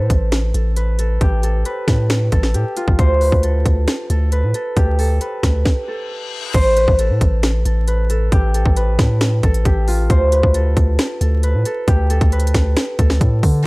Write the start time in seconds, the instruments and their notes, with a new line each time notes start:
Already playing: harp A4 B4
0.10 808-style bass A1, kick, closed hi-hat
0.32 finger snap, snare, closed hi-hat
0.54 808-style bass A1, harp A4, closed hi-hat
0.77 harp B4, closed hi-hat
0.99 harp A4, closed hi-hat
1.21 808-style bass A1, harp G4, kick, closed hi-hat
1.43 harp A4, closed hi-hat
1.65 harp B4, closed hi-hat
1.88 808-style bass A2, finger snap, kick, snare, closed hi-hat
2.10 finger snap, snare, closed hi-hat
2.32 808-style bass A1, harp A4, kick, closed hi-hat
2.43 snare
2.54 808-style bass A2, harp G4, closed hi-hat
2.77 harp F4, closed hi-hat
2.88 808-style bass A1, kick
2.99 808-style bass D2, harp C5, kick, closed hi-hat
3.21 harp B4, open hi-hat
3.32 808-style bass D2, kick
3.43 harp A4, closed hi-hat
3.65 808-style bass D2, kick, closed hi-hat
3.88 finger snap, snare, closed hi-hat
4.10 808-style bass D2, harp A4, closed hi-hat
4.32 harp B4, closed hi-hat
4.43 808-style bass A2
4.54 harp A4, closed hi-hat
4.76 808-style bass D2, harp G4, kick, closed hi-hat
4.99 harp A4, open hi-hat
5.21 harp B4, closed hi-hat
5.43 808-style bass D2, finger snap, kick, snare, closed hi-hat
5.65 kick, snare, reverse cymbal
5.88 harp A4
6.54 808-style bass A1, harp C5, kick, closed hi-hat, crash
6.77 harp B4, closed hi-hat
6.88 808-style bass A1, kick
6.99 harp A4, closed hi-hat
7.10 808-style bass A2
7.21 808-style bass A1, kick, closed hi-hat
7.43 finger snap, snare, closed hi-hat
7.65 808-style bass A1, harp A4, closed hi-hat
7.88 harp B4, closed hi-hat
8.10 harp A4, closed hi-hat
8.32 808-style bass A1, harp G4, kick, closed hi-hat
8.54 harp A4, closed hi-hat
8.65 808-style bass A1, kick
8.76 harp B4, closed hi-hat
8.99 808-style bass A2, finger snap, kick, snare, closed hi-hat
9.21 finger snap, snare, closed hi-hat
9.43 808-style bass A1, harp A4, kick, closed hi-hat
9.54 closed hi-hat
9.65 808-style bass A1, harp G4, kick, closed hi-hat
9.88 harp F4, open hi-hat
10.10 808-style bass D2, harp C5, kick, closed hi-hat
10.32 harp B4, closed hi-hat
10.43 808-style bass D2, kick
10.54 harp A4, closed hi-hat
10.77 808-style bass D2, kick, closed hi-hat
10.99 finger snap, snare, closed hi-hat
11.21 808-style bass D2, harp A4, closed hi-hat
11.43 harp B4, closed hi-hat
11.54 808-style bass A2
11.65 harp A4, closed hi-hat
11.88 808-style bass D2, harp G4, kick, closed hi-hat
12.10 harp A4, closed hi-hat
12.21 808-style bass D2, kick, closed hi-hat
12.32 harp B4, closed hi-hat
12.40 closed hi-hat
12.47 closed hi-hat
12.54 808-style bass D2, finger snap, kick, snare, closed hi-hat
12.76 finger snap, snare, closed hi-hat
12.99 808-style bass D2, harp A4, kick, closed hi-hat
13.10 snare
13.21 808-style bass A2, kick, closed hi-hat
13.43 808-style bass D3, kick, open hi-hat